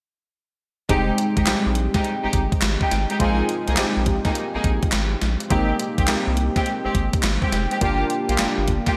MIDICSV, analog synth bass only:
0, 0, Header, 1, 2, 480
1, 0, Start_track
1, 0, Tempo, 576923
1, 743, Time_signature, 4, 2, 24, 8
1, 7461, End_track
2, 0, Start_track
2, 0, Title_t, "Analog synth bass"
2, 0, Program_c, 0, 38
2, 744, Note_on_c, 0, 29, 104
2, 930, Note_off_c, 0, 29, 0
2, 1140, Note_on_c, 0, 32, 97
2, 1205, Note_off_c, 0, 32, 0
2, 1228, Note_on_c, 0, 34, 48
2, 1289, Note_off_c, 0, 34, 0
2, 1385, Note_on_c, 0, 34, 90
2, 1569, Note_off_c, 0, 34, 0
2, 1865, Note_on_c, 0, 32, 52
2, 1897, Note_off_c, 0, 32, 0
2, 1943, Note_on_c, 0, 32, 87
2, 2064, Note_off_c, 0, 32, 0
2, 2184, Note_on_c, 0, 32, 96
2, 2305, Note_off_c, 0, 32, 0
2, 2428, Note_on_c, 0, 32, 86
2, 2547, Note_off_c, 0, 32, 0
2, 2665, Note_on_c, 0, 34, 96
2, 2851, Note_off_c, 0, 34, 0
2, 3064, Note_on_c, 0, 36, 91
2, 3127, Note_off_c, 0, 36, 0
2, 3143, Note_on_c, 0, 34, 45
2, 3205, Note_off_c, 0, 34, 0
2, 3303, Note_on_c, 0, 34, 84
2, 3488, Note_off_c, 0, 34, 0
2, 3785, Note_on_c, 0, 34, 46
2, 3817, Note_off_c, 0, 34, 0
2, 3864, Note_on_c, 0, 34, 81
2, 3985, Note_off_c, 0, 34, 0
2, 4105, Note_on_c, 0, 32, 87
2, 4291, Note_off_c, 0, 32, 0
2, 4345, Note_on_c, 0, 34, 85
2, 4466, Note_off_c, 0, 34, 0
2, 4581, Note_on_c, 0, 32, 110
2, 4768, Note_off_c, 0, 32, 0
2, 4979, Note_on_c, 0, 34, 96
2, 5044, Note_off_c, 0, 34, 0
2, 5065, Note_on_c, 0, 36, 44
2, 5127, Note_off_c, 0, 36, 0
2, 5220, Note_on_c, 0, 36, 91
2, 5407, Note_off_c, 0, 36, 0
2, 5699, Note_on_c, 0, 32, 52
2, 5733, Note_off_c, 0, 32, 0
2, 5782, Note_on_c, 0, 32, 86
2, 5904, Note_off_c, 0, 32, 0
2, 6021, Note_on_c, 0, 32, 92
2, 6144, Note_off_c, 0, 32, 0
2, 6261, Note_on_c, 0, 29, 96
2, 6384, Note_off_c, 0, 29, 0
2, 6505, Note_on_c, 0, 31, 101
2, 6691, Note_off_c, 0, 31, 0
2, 6898, Note_on_c, 0, 34, 94
2, 6964, Note_off_c, 0, 34, 0
2, 6988, Note_on_c, 0, 31, 49
2, 7049, Note_off_c, 0, 31, 0
2, 7139, Note_on_c, 0, 31, 83
2, 7326, Note_off_c, 0, 31, 0
2, 7461, End_track
0, 0, End_of_file